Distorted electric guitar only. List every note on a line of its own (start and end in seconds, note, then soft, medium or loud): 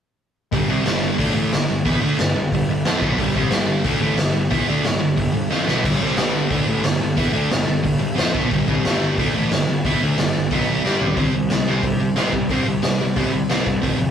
0.52 0.68 G2 medium
0.52 0.68 D3 medium
0.52 0.68 G3 loud
0.69 0.85 C3 medium
0.69 0.84 G3 medium
0.69 0.85 C4 loud
0.84 1.18 G2 medium
0.84 1.17 D3 medium
0.84 1.18 G3 loud
1.18 1.34 D3 medium
1.18 1.34 A3 medium
1.18 1.34 D4 loud
1.34 1.51 A2 loud
1.34 1.51 E3 medium
1.34 1.51 A3 loud
1.52 1.65 G2 medium
1.52 1.66 D3 medium
1.70 1.83 G2 medium
1.70 1.83 D3 medium
1.85 2.01 E3 loud
1.85 2.01 B3 loud
1.85 2.02 E4 loud
2.01 2.18 D3 loud
2.01 2.18 A3 loud
2.01 2.18 D4 medium
2.19 2.32 G2 medium
2.19 2.32 D3 medium
2.36 2.49 G2 medium
2.36 2.49 D3 medium
2.54 2.66 G2 medium
2.54 2.67 D3 medium
2.70 2.83 G2 medium
2.70 2.83 D3 medium
2.85 3.01 F3 medium
2.85 3.01 C4 medium
2.85 3.01 F4 loud
3.01 3.18 B2 medium
3.01 3.18 F#3 medium
3.01 3.18 B3 loud
3.18 3.35 G2 medium
3.18 3.35 D3 loud
3.18 3.35 G3 loud
3.36 3.51 C3 loud
3.36 3.51 G3 loud
3.36 3.52 C4 loud
3.51 3.84 G2 medium
3.51 3.83 D3 loud
3.51 3.84 G3 loud
3.84 4.01 D3 loud
3.84 4.01 A3 loud
3.84 4.01 D4 loud
4.02 4.18 A2 loud
4.02 4.18 E3 loud
4.02 4.18 A3 loud
4.18 4.32 G2 medium
4.18 4.32 D3 medium
4.33 4.48 G2 medium
4.33 4.48 D3 medium
4.50 4.67 E3 medium
4.50 4.67 B3 medium
4.50 4.68 E4 loud
4.68 4.84 D3 medium
4.68 4.84 A3 medium
4.68 4.85 D4 loud
4.85 4.98 G2 medium
4.85 4.99 D3 medium
5.00 5.14 G2 medium
5.00 5.14 D3 medium
5.17 5.31 G2 medium
5.17 5.31 D3 medium
5.34 5.48 G2 medium
5.34 5.48 D3 medium
5.50 5.65 F3 medium
5.50 5.66 C4 medium
5.50 5.66 F4 medium
5.65 5.83 B2 medium
5.65 5.84 F#3 loud
5.65 5.84 B3 medium
5.83 6.00 G2 medium
5.83 6.00 D3 loud
5.83 6.00 G3 loud
6.00 6.17 C3 medium
6.00 6.17 G3 loud
6.00 6.18 C4 medium
6.17 6.50 G2 medium
6.17 6.49 D3 medium
6.17 6.50 G3 loud
6.50 6.67 D3 medium
6.50 6.67 A3 medium
6.50 6.67 D4 loud
6.68 6.84 A2 medium
6.68 6.84 E3 medium
6.68 6.85 A3 loud
6.85 6.98 G2 medium
6.85 6.98 D3 medium
7.00 7.14 G2 medium
7.00 7.14 D3 medium
7.17 7.32 E3 loud
7.17 7.32 B3 loud
7.17 7.33 E4 loud
7.33 7.49 D3 medium
7.33 7.50 A3 medium
7.33 7.50 D4 loud
7.50 7.64 G2 medium
7.50 7.64 D3 medium
7.67 7.81 G2 medium
7.67 7.81 D3 medium
7.83 7.97 G2 medium
7.83 7.97 D3 medium
7.99 8.14 G2 medium
7.99 8.13 D3 medium
8.15 8.33 F3 medium
8.15 8.33 C4 medium
8.15 8.33 F4 medium
8.34 8.50 B2 medium
8.34 8.50 F#3 medium
8.34 8.51 B3 loud
8.51 8.67 G2 medium
8.51 8.67 D3 loud
8.51 8.67 G3 loud
8.68 8.84 C3 loud
8.68 8.84 G3 loud
8.68 8.84 C4 loud
8.85 9.17 G2 medium
8.85 9.18 D3 medium
8.85 9.18 G3 loud
9.19 9.34 D3 medium
9.19 9.34 A3 medium
9.19 9.34 D4 loud
9.35 9.51 A2 medium
9.35 9.51 E3 loud
9.35 9.51 A3 loud
9.50 9.63 G2 medium
9.50 9.64 D3 medium
9.69 9.81 G2 medium
9.69 9.82 D3 medium
9.85 10.01 E3 medium
9.85 10.01 B3 medium
9.85 10.01 E4 loud
10.02 10.17 D3 medium
10.02 10.18 A3 loud
10.02 10.18 D4 loud
10.18 10.31 G2 medium
10.18 10.31 D3 medium
10.35 10.48 G2 medium
10.35 10.47 D3 medium
10.51 10.84 B2 medium
10.51 10.84 F#3 loud
10.51 10.84 B3 loud
10.84 11.16 G3 medium
10.84 11.17 D4 medium
10.84 11.17 G4 loud
11.17 11.33 C3 medium
11.17 11.33 G3 medium
11.17 11.33 C4 loud
11.35 11.49 C3 medium
11.35 11.49 G3 medium
11.50 11.65 C3 medium
11.50 11.66 G3 medium
11.68 11.82 C3 medium
11.68 11.83 G3 medium
11.68 11.84 C4 medium
11.83 11.98 C3 medium
11.83 11.99 G3 medium
12.00 12.15 C3 medium
12.00 12.15 G3 medium
12.16 12.32 C3 medium
12.16 12.32 G3 medium
12.16 12.32 C4 medium
12.33 12.48 C3 medium
12.33 12.48 G3 medium
12.50 12.65 C3 medium
12.50 12.65 G3 medium
12.50 12.66 C4 medium
12.66 12.81 C3 medium
12.66 12.81 G3 medium
12.82 12.98 C3 medium
12.82 12.98 G3 medium
13.00 13.15 C3 medium
13.00 13.15 G3 medium
13.16 13.32 C3 medium
13.16 13.32 G3 medium
13.16 13.32 C4 medium
13.33 13.48 C3 medium
13.33 13.48 G3 medium
13.49 13.66 C3 medium
13.49 13.65 G3 medium
13.49 13.66 C4 medium
13.67 13.81 C3 medium
13.67 13.82 G3 medium
13.82 13.97 F2 medium
13.82 13.98 C3 loud
13.82 13.99 F3 loud
13.98 14.11 F2 medium
13.98 14.11 C3 medium